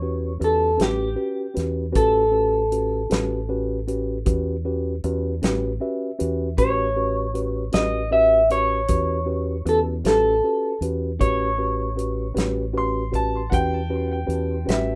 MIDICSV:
0, 0, Header, 1, 6, 480
1, 0, Start_track
1, 0, Tempo, 771208
1, 1217, Time_signature, 12, 3, 24, 8
1, 9307, End_track
2, 0, Start_track
2, 0, Title_t, "Upright piano"
2, 0, Program_c, 0, 0
2, 7951, Note_on_c, 0, 84, 69
2, 8175, Note_off_c, 0, 84, 0
2, 8186, Note_on_c, 0, 81, 67
2, 8400, Note_on_c, 0, 78, 45
2, 8412, Note_off_c, 0, 81, 0
2, 8425, Note_on_c, 0, 79, 75
2, 8426, Note_off_c, 0, 78, 0
2, 9117, Note_off_c, 0, 79, 0
2, 9143, Note_on_c, 0, 76, 53
2, 9307, Note_off_c, 0, 76, 0
2, 9307, End_track
3, 0, Start_track
3, 0, Title_t, "Clean electric guitar"
3, 0, Program_c, 1, 27
3, 0, Note_on_c, 1, 73, 80
3, 276, Note_on_c, 1, 69, 61
3, 291, Note_off_c, 1, 73, 0
3, 491, Note_off_c, 1, 69, 0
3, 511, Note_on_c, 1, 67, 62
3, 959, Note_off_c, 1, 67, 0
3, 1221, Note_on_c, 1, 69, 88
3, 2634, Note_off_c, 1, 69, 0
3, 4098, Note_on_c, 1, 73, 76
3, 4814, Note_off_c, 1, 73, 0
3, 4817, Note_on_c, 1, 75, 93
3, 5039, Note_off_c, 1, 75, 0
3, 5057, Note_on_c, 1, 76, 79
3, 5298, Note_off_c, 1, 76, 0
3, 5300, Note_on_c, 1, 73, 76
3, 5992, Note_off_c, 1, 73, 0
3, 6030, Note_on_c, 1, 69, 68
3, 6093, Note_off_c, 1, 69, 0
3, 6268, Note_on_c, 1, 69, 64
3, 6715, Note_off_c, 1, 69, 0
3, 6975, Note_on_c, 1, 73, 88
3, 8388, Note_off_c, 1, 73, 0
3, 9307, End_track
4, 0, Start_track
4, 0, Title_t, "Tine electric piano"
4, 0, Program_c, 2, 4
4, 13, Note_on_c, 2, 61, 43
4, 13, Note_on_c, 2, 67, 38
4, 14, Note_on_c, 2, 66, 42
4, 16, Note_on_c, 2, 71, 50
4, 195, Note_off_c, 2, 61, 0
4, 195, Note_off_c, 2, 67, 0
4, 196, Note_off_c, 2, 66, 0
4, 197, Note_off_c, 2, 71, 0
4, 246, Note_on_c, 2, 61, 40
4, 248, Note_on_c, 2, 67, 41
4, 250, Note_on_c, 2, 66, 38
4, 251, Note_on_c, 2, 71, 47
4, 432, Note_off_c, 2, 61, 0
4, 433, Note_off_c, 2, 67, 0
4, 434, Note_off_c, 2, 66, 0
4, 434, Note_off_c, 2, 71, 0
4, 483, Note_on_c, 2, 61, 50
4, 483, Note_on_c, 2, 66, 39
4, 483, Note_on_c, 2, 67, 44
4, 488, Note_on_c, 2, 71, 51
4, 670, Note_off_c, 2, 61, 0
4, 670, Note_off_c, 2, 66, 0
4, 670, Note_off_c, 2, 67, 0
4, 673, Note_off_c, 2, 71, 0
4, 718, Note_on_c, 2, 66, 39
4, 720, Note_on_c, 2, 61, 45
4, 723, Note_on_c, 2, 67, 40
4, 724, Note_on_c, 2, 71, 44
4, 908, Note_off_c, 2, 66, 0
4, 909, Note_off_c, 2, 61, 0
4, 910, Note_off_c, 2, 67, 0
4, 911, Note_off_c, 2, 71, 0
4, 960, Note_on_c, 2, 61, 48
4, 962, Note_on_c, 2, 66, 43
4, 965, Note_on_c, 2, 67, 45
4, 967, Note_on_c, 2, 71, 50
4, 1149, Note_off_c, 2, 61, 0
4, 1150, Note_off_c, 2, 66, 0
4, 1151, Note_off_c, 2, 67, 0
4, 1152, Note_off_c, 2, 71, 0
4, 1197, Note_on_c, 2, 61, 62
4, 1198, Note_on_c, 2, 66, 55
4, 1199, Note_on_c, 2, 71, 64
4, 1201, Note_on_c, 2, 67, 57
4, 1387, Note_off_c, 2, 61, 0
4, 1388, Note_off_c, 2, 66, 0
4, 1388, Note_off_c, 2, 71, 0
4, 1389, Note_off_c, 2, 67, 0
4, 1439, Note_on_c, 2, 61, 45
4, 1441, Note_on_c, 2, 66, 37
4, 1442, Note_on_c, 2, 67, 39
4, 1445, Note_on_c, 2, 71, 53
4, 1628, Note_off_c, 2, 61, 0
4, 1629, Note_off_c, 2, 66, 0
4, 1630, Note_off_c, 2, 67, 0
4, 1631, Note_off_c, 2, 71, 0
4, 1689, Note_on_c, 2, 61, 46
4, 1692, Note_on_c, 2, 66, 41
4, 1694, Note_on_c, 2, 67, 42
4, 1694, Note_on_c, 2, 71, 45
4, 1873, Note_off_c, 2, 61, 0
4, 1875, Note_off_c, 2, 66, 0
4, 1876, Note_off_c, 2, 67, 0
4, 1876, Note_off_c, 2, 71, 0
4, 1928, Note_on_c, 2, 61, 52
4, 1929, Note_on_c, 2, 66, 48
4, 1932, Note_on_c, 2, 67, 51
4, 1934, Note_on_c, 2, 71, 59
4, 2112, Note_off_c, 2, 61, 0
4, 2113, Note_off_c, 2, 66, 0
4, 2114, Note_off_c, 2, 67, 0
4, 2115, Note_off_c, 2, 71, 0
4, 2171, Note_on_c, 2, 61, 54
4, 2171, Note_on_c, 2, 66, 50
4, 2173, Note_on_c, 2, 67, 51
4, 2176, Note_on_c, 2, 71, 61
4, 2354, Note_off_c, 2, 61, 0
4, 2354, Note_off_c, 2, 66, 0
4, 2355, Note_off_c, 2, 67, 0
4, 2356, Note_off_c, 2, 71, 0
4, 2411, Note_on_c, 2, 61, 52
4, 2413, Note_on_c, 2, 66, 45
4, 2415, Note_on_c, 2, 67, 50
4, 2417, Note_on_c, 2, 71, 55
4, 2594, Note_off_c, 2, 61, 0
4, 2595, Note_off_c, 2, 66, 0
4, 2596, Note_off_c, 2, 67, 0
4, 2597, Note_off_c, 2, 71, 0
4, 2649, Note_on_c, 2, 61, 54
4, 2651, Note_on_c, 2, 66, 52
4, 2652, Note_on_c, 2, 67, 53
4, 2655, Note_on_c, 2, 71, 58
4, 2832, Note_off_c, 2, 61, 0
4, 2834, Note_off_c, 2, 66, 0
4, 2834, Note_off_c, 2, 67, 0
4, 2836, Note_off_c, 2, 71, 0
4, 2893, Note_on_c, 2, 61, 53
4, 2895, Note_on_c, 2, 66, 49
4, 2896, Note_on_c, 2, 67, 53
4, 2899, Note_on_c, 2, 71, 56
4, 3075, Note_off_c, 2, 61, 0
4, 3076, Note_off_c, 2, 66, 0
4, 3076, Note_off_c, 2, 67, 0
4, 3077, Note_off_c, 2, 71, 0
4, 3137, Note_on_c, 2, 61, 55
4, 3138, Note_on_c, 2, 67, 48
4, 3139, Note_on_c, 2, 66, 50
4, 3144, Note_on_c, 2, 71, 60
4, 3316, Note_off_c, 2, 61, 0
4, 3317, Note_off_c, 2, 66, 0
4, 3317, Note_off_c, 2, 67, 0
4, 3320, Note_off_c, 2, 71, 0
4, 3373, Note_on_c, 2, 61, 60
4, 3378, Note_on_c, 2, 66, 52
4, 3378, Note_on_c, 2, 67, 54
4, 3381, Note_on_c, 2, 71, 66
4, 3554, Note_off_c, 2, 61, 0
4, 3557, Note_off_c, 2, 66, 0
4, 3557, Note_off_c, 2, 67, 0
4, 3558, Note_off_c, 2, 71, 0
4, 3613, Note_on_c, 2, 61, 56
4, 3617, Note_on_c, 2, 67, 48
4, 3617, Note_on_c, 2, 76, 51
4, 3618, Note_on_c, 2, 66, 47
4, 3619, Note_on_c, 2, 71, 60
4, 3794, Note_off_c, 2, 61, 0
4, 3797, Note_off_c, 2, 66, 0
4, 3797, Note_off_c, 2, 67, 0
4, 3797, Note_off_c, 2, 71, 0
4, 3852, Note_on_c, 2, 61, 59
4, 3853, Note_on_c, 2, 66, 55
4, 3855, Note_on_c, 2, 67, 53
4, 3855, Note_on_c, 2, 71, 63
4, 4034, Note_off_c, 2, 61, 0
4, 4034, Note_off_c, 2, 66, 0
4, 4035, Note_off_c, 2, 67, 0
4, 4035, Note_off_c, 2, 71, 0
4, 4071, Note_off_c, 2, 76, 0
4, 4092, Note_on_c, 2, 61, 62
4, 4097, Note_on_c, 2, 71, 68
4, 4098, Note_on_c, 2, 66, 55
4, 4098, Note_on_c, 2, 67, 57
4, 4274, Note_off_c, 2, 61, 0
4, 4276, Note_off_c, 2, 66, 0
4, 4276, Note_off_c, 2, 67, 0
4, 4276, Note_off_c, 2, 71, 0
4, 4334, Note_on_c, 2, 61, 46
4, 4334, Note_on_c, 2, 67, 42
4, 4336, Note_on_c, 2, 66, 43
4, 4337, Note_on_c, 2, 71, 54
4, 4514, Note_off_c, 2, 67, 0
4, 4515, Note_off_c, 2, 61, 0
4, 4516, Note_off_c, 2, 66, 0
4, 4516, Note_off_c, 2, 71, 0
4, 4568, Note_on_c, 2, 66, 45
4, 4569, Note_on_c, 2, 61, 42
4, 4571, Note_on_c, 2, 67, 41
4, 4574, Note_on_c, 2, 71, 55
4, 4751, Note_off_c, 2, 66, 0
4, 4752, Note_off_c, 2, 61, 0
4, 4753, Note_off_c, 2, 67, 0
4, 4754, Note_off_c, 2, 71, 0
4, 4806, Note_on_c, 2, 61, 47
4, 4808, Note_on_c, 2, 66, 42
4, 4811, Note_on_c, 2, 67, 41
4, 4811, Note_on_c, 2, 71, 52
4, 4990, Note_off_c, 2, 61, 0
4, 4991, Note_off_c, 2, 66, 0
4, 4993, Note_off_c, 2, 67, 0
4, 4993, Note_off_c, 2, 71, 0
4, 5047, Note_on_c, 2, 66, 47
4, 5048, Note_on_c, 2, 61, 50
4, 5051, Note_on_c, 2, 67, 44
4, 5053, Note_on_c, 2, 71, 57
4, 5231, Note_off_c, 2, 61, 0
4, 5231, Note_off_c, 2, 66, 0
4, 5233, Note_off_c, 2, 67, 0
4, 5234, Note_off_c, 2, 71, 0
4, 5290, Note_on_c, 2, 66, 45
4, 5291, Note_on_c, 2, 61, 43
4, 5291, Note_on_c, 2, 67, 41
4, 5296, Note_on_c, 2, 71, 51
4, 5472, Note_off_c, 2, 61, 0
4, 5472, Note_off_c, 2, 66, 0
4, 5473, Note_off_c, 2, 67, 0
4, 5475, Note_off_c, 2, 71, 0
4, 5531, Note_on_c, 2, 61, 46
4, 5533, Note_on_c, 2, 66, 45
4, 5534, Note_on_c, 2, 67, 44
4, 5536, Note_on_c, 2, 71, 58
4, 5713, Note_off_c, 2, 61, 0
4, 5713, Note_off_c, 2, 66, 0
4, 5714, Note_off_c, 2, 67, 0
4, 5715, Note_off_c, 2, 71, 0
4, 5762, Note_on_c, 2, 61, 47
4, 5764, Note_on_c, 2, 66, 44
4, 5766, Note_on_c, 2, 67, 44
4, 5770, Note_on_c, 2, 71, 50
4, 5948, Note_off_c, 2, 61, 0
4, 5949, Note_off_c, 2, 66, 0
4, 5950, Note_off_c, 2, 67, 0
4, 5952, Note_off_c, 2, 71, 0
4, 6009, Note_on_c, 2, 61, 46
4, 6009, Note_on_c, 2, 66, 41
4, 6011, Note_on_c, 2, 67, 38
4, 6013, Note_on_c, 2, 71, 52
4, 6191, Note_off_c, 2, 61, 0
4, 6191, Note_off_c, 2, 66, 0
4, 6192, Note_off_c, 2, 67, 0
4, 6193, Note_off_c, 2, 71, 0
4, 6251, Note_on_c, 2, 61, 54
4, 6251, Note_on_c, 2, 66, 46
4, 6251, Note_on_c, 2, 67, 46
4, 6257, Note_on_c, 2, 71, 57
4, 6432, Note_off_c, 2, 61, 0
4, 6432, Note_off_c, 2, 66, 0
4, 6432, Note_off_c, 2, 67, 0
4, 6435, Note_off_c, 2, 71, 0
4, 6495, Note_on_c, 2, 61, 42
4, 6495, Note_on_c, 2, 66, 39
4, 6499, Note_on_c, 2, 67, 42
4, 6502, Note_on_c, 2, 71, 50
4, 6674, Note_off_c, 2, 61, 0
4, 6674, Note_off_c, 2, 66, 0
4, 6676, Note_off_c, 2, 67, 0
4, 6677, Note_off_c, 2, 71, 0
4, 6730, Note_on_c, 2, 61, 48
4, 6735, Note_on_c, 2, 66, 47
4, 6736, Note_on_c, 2, 67, 45
4, 6739, Note_on_c, 2, 71, 54
4, 6912, Note_off_c, 2, 61, 0
4, 6914, Note_off_c, 2, 66, 0
4, 6915, Note_off_c, 2, 67, 0
4, 6916, Note_off_c, 2, 71, 0
4, 6965, Note_on_c, 2, 61, 57
4, 6969, Note_on_c, 2, 67, 53
4, 6970, Note_on_c, 2, 66, 55
4, 6974, Note_on_c, 2, 71, 62
4, 7149, Note_off_c, 2, 61, 0
4, 7151, Note_off_c, 2, 66, 0
4, 7151, Note_off_c, 2, 67, 0
4, 7153, Note_off_c, 2, 71, 0
4, 7207, Note_on_c, 2, 66, 42
4, 7208, Note_on_c, 2, 61, 45
4, 7210, Note_on_c, 2, 67, 42
4, 7210, Note_on_c, 2, 71, 52
4, 7390, Note_off_c, 2, 61, 0
4, 7390, Note_off_c, 2, 66, 0
4, 7391, Note_off_c, 2, 67, 0
4, 7391, Note_off_c, 2, 71, 0
4, 7443, Note_on_c, 2, 67, 41
4, 7444, Note_on_c, 2, 66, 43
4, 7445, Note_on_c, 2, 61, 42
4, 7451, Note_on_c, 2, 71, 49
4, 7628, Note_off_c, 2, 66, 0
4, 7628, Note_off_c, 2, 67, 0
4, 7629, Note_off_c, 2, 61, 0
4, 7631, Note_off_c, 2, 71, 0
4, 7682, Note_on_c, 2, 61, 55
4, 7683, Note_on_c, 2, 66, 52
4, 7683, Note_on_c, 2, 67, 53
4, 7686, Note_on_c, 2, 71, 62
4, 7867, Note_off_c, 2, 61, 0
4, 7867, Note_off_c, 2, 66, 0
4, 7867, Note_off_c, 2, 67, 0
4, 7869, Note_off_c, 2, 71, 0
4, 7923, Note_on_c, 2, 61, 57
4, 7924, Note_on_c, 2, 66, 55
4, 7928, Note_on_c, 2, 67, 51
4, 7929, Note_on_c, 2, 71, 59
4, 8107, Note_off_c, 2, 61, 0
4, 8108, Note_off_c, 2, 66, 0
4, 8110, Note_off_c, 2, 67, 0
4, 8110, Note_off_c, 2, 71, 0
4, 8164, Note_on_c, 2, 61, 45
4, 8166, Note_on_c, 2, 66, 49
4, 8166, Note_on_c, 2, 67, 46
4, 8171, Note_on_c, 2, 71, 52
4, 8348, Note_off_c, 2, 61, 0
4, 8349, Note_off_c, 2, 66, 0
4, 8349, Note_off_c, 2, 67, 0
4, 8352, Note_off_c, 2, 71, 0
4, 8408, Note_on_c, 2, 66, 53
4, 8409, Note_on_c, 2, 61, 55
4, 8410, Note_on_c, 2, 67, 49
4, 8414, Note_on_c, 2, 71, 59
4, 8590, Note_off_c, 2, 61, 0
4, 8590, Note_off_c, 2, 66, 0
4, 8591, Note_off_c, 2, 67, 0
4, 8593, Note_off_c, 2, 71, 0
4, 8649, Note_on_c, 2, 61, 55
4, 8651, Note_on_c, 2, 66, 50
4, 8651, Note_on_c, 2, 67, 43
4, 8654, Note_on_c, 2, 71, 62
4, 8830, Note_off_c, 2, 61, 0
4, 8831, Note_off_c, 2, 66, 0
4, 8832, Note_off_c, 2, 67, 0
4, 8833, Note_off_c, 2, 71, 0
4, 8879, Note_on_c, 2, 61, 50
4, 8881, Note_on_c, 2, 67, 48
4, 8883, Note_on_c, 2, 71, 63
4, 8884, Note_on_c, 2, 66, 42
4, 9065, Note_off_c, 2, 61, 0
4, 9066, Note_off_c, 2, 67, 0
4, 9067, Note_off_c, 2, 71, 0
4, 9068, Note_off_c, 2, 66, 0
4, 9119, Note_on_c, 2, 61, 56
4, 9121, Note_on_c, 2, 66, 52
4, 9124, Note_on_c, 2, 67, 49
4, 9129, Note_on_c, 2, 71, 58
4, 9305, Note_off_c, 2, 61, 0
4, 9306, Note_off_c, 2, 66, 0
4, 9307, Note_off_c, 2, 67, 0
4, 9307, Note_off_c, 2, 71, 0
4, 9307, End_track
5, 0, Start_track
5, 0, Title_t, "Fingered electric bass"
5, 0, Program_c, 3, 33
5, 0, Note_on_c, 3, 40, 76
5, 233, Note_off_c, 3, 40, 0
5, 255, Note_on_c, 3, 40, 79
5, 477, Note_off_c, 3, 40, 0
5, 493, Note_on_c, 3, 33, 81
5, 716, Note_off_c, 3, 33, 0
5, 977, Note_on_c, 3, 40, 68
5, 1198, Note_off_c, 3, 40, 0
5, 1215, Note_on_c, 3, 33, 72
5, 1911, Note_off_c, 3, 33, 0
5, 1934, Note_on_c, 3, 33, 64
5, 2630, Note_off_c, 3, 33, 0
5, 2655, Note_on_c, 3, 40, 72
5, 3110, Note_off_c, 3, 40, 0
5, 3137, Note_on_c, 3, 40, 79
5, 3357, Note_off_c, 3, 40, 0
5, 3376, Note_on_c, 3, 33, 79
5, 3597, Note_off_c, 3, 33, 0
5, 3864, Note_on_c, 3, 40, 64
5, 4081, Note_off_c, 3, 40, 0
5, 4095, Note_on_c, 3, 33, 81
5, 4790, Note_off_c, 3, 33, 0
5, 4816, Note_on_c, 3, 33, 72
5, 5510, Note_off_c, 3, 33, 0
5, 5537, Note_on_c, 3, 40, 76
5, 5990, Note_off_c, 3, 40, 0
5, 6010, Note_on_c, 3, 40, 81
5, 6232, Note_off_c, 3, 40, 0
5, 6251, Note_on_c, 3, 33, 90
5, 6473, Note_off_c, 3, 33, 0
5, 6727, Note_on_c, 3, 40, 63
5, 6950, Note_off_c, 3, 40, 0
5, 6975, Note_on_c, 3, 33, 87
5, 7669, Note_off_c, 3, 33, 0
5, 7691, Note_on_c, 3, 33, 71
5, 8386, Note_off_c, 3, 33, 0
5, 8418, Note_on_c, 3, 40, 73
5, 8870, Note_off_c, 3, 40, 0
5, 8889, Note_on_c, 3, 40, 79
5, 9111, Note_off_c, 3, 40, 0
5, 9135, Note_on_c, 3, 33, 80
5, 9307, Note_off_c, 3, 33, 0
5, 9307, End_track
6, 0, Start_track
6, 0, Title_t, "Drums"
6, 259, Note_on_c, 9, 42, 47
6, 322, Note_off_c, 9, 42, 0
6, 495, Note_on_c, 9, 42, 68
6, 505, Note_on_c, 9, 38, 81
6, 557, Note_off_c, 9, 42, 0
6, 567, Note_off_c, 9, 38, 0
6, 974, Note_on_c, 9, 42, 52
6, 984, Note_on_c, 9, 38, 28
6, 1036, Note_off_c, 9, 42, 0
6, 1046, Note_off_c, 9, 38, 0
6, 1214, Note_on_c, 9, 42, 70
6, 1217, Note_on_c, 9, 36, 87
6, 1277, Note_off_c, 9, 42, 0
6, 1279, Note_off_c, 9, 36, 0
6, 1692, Note_on_c, 9, 42, 48
6, 1754, Note_off_c, 9, 42, 0
6, 1934, Note_on_c, 9, 42, 69
6, 1944, Note_on_c, 9, 38, 89
6, 1996, Note_off_c, 9, 42, 0
6, 2006, Note_off_c, 9, 38, 0
6, 2416, Note_on_c, 9, 42, 43
6, 2478, Note_off_c, 9, 42, 0
6, 2651, Note_on_c, 9, 42, 66
6, 2655, Note_on_c, 9, 36, 92
6, 2713, Note_off_c, 9, 42, 0
6, 2718, Note_off_c, 9, 36, 0
6, 3135, Note_on_c, 9, 42, 45
6, 3197, Note_off_c, 9, 42, 0
6, 3377, Note_on_c, 9, 42, 63
6, 3387, Note_on_c, 9, 38, 93
6, 3439, Note_off_c, 9, 42, 0
6, 3449, Note_off_c, 9, 38, 0
6, 3857, Note_on_c, 9, 42, 50
6, 3919, Note_off_c, 9, 42, 0
6, 4095, Note_on_c, 9, 42, 68
6, 4096, Note_on_c, 9, 36, 89
6, 4157, Note_off_c, 9, 42, 0
6, 4158, Note_off_c, 9, 36, 0
6, 4574, Note_on_c, 9, 42, 46
6, 4636, Note_off_c, 9, 42, 0
6, 4808, Note_on_c, 9, 42, 64
6, 4818, Note_on_c, 9, 38, 93
6, 4870, Note_off_c, 9, 42, 0
6, 4880, Note_off_c, 9, 38, 0
6, 5292, Note_on_c, 9, 42, 47
6, 5354, Note_off_c, 9, 42, 0
6, 5529, Note_on_c, 9, 42, 74
6, 5535, Note_on_c, 9, 36, 83
6, 5591, Note_off_c, 9, 42, 0
6, 5597, Note_off_c, 9, 36, 0
6, 6015, Note_on_c, 9, 42, 48
6, 6077, Note_off_c, 9, 42, 0
6, 6254, Note_on_c, 9, 42, 67
6, 6264, Note_on_c, 9, 38, 87
6, 6316, Note_off_c, 9, 42, 0
6, 6326, Note_off_c, 9, 38, 0
6, 6734, Note_on_c, 9, 42, 55
6, 6796, Note_off_c, 9, 42, 0
6, 6976, Note_on_c, 9, 36, 88
6, 6976, Note_on_c, 9, 42, 61
6, 7038, Note_off_c, 9, 36, 0
6, 7038, Note_off_c, 9, 42, 0
6, 7460, Note_on_c, 9, 42, 49
6, 7522, Note_off_c, 9, 42, 0
6, 7697, Note_on_c, 9, 42, 65
6, 7707, Note_on_c, 9, 38, 80
6, 7760, Note_off_c, 9, 42, 0
6, 7770, Note_off_c, 9, 38, 0
6, 8176, Note_on_c, 9, 36, 59
6, 8177, Note_on_c, 9, 42, 44
6, 8238, Note_off_c, 9, 36, 0
6, 8239, Note_off_c, 9, 42, 0
6, 8416, Note_on_c, 9, 36, 88
6, 8419, Note_on_c, 9, 42, 60
6, 8478, Note_off_c, 9, 36, 0
6, 8481, Note_off_c, 9, 42, 0
6, 8898, Note_on_c, 9, 42, 42
6, 8960, Note_off_c, 9, 42, 0
6, 9140, Note_on_c, 9, 42, 67
6, 9150, Note_on_c, 9, 38, 86
6, 9202, Note_off_c, 9, 42, 0
6, 9212, Note_off_c, 9, 38, 0
6, 9307, End_track
0, 0, End_of_file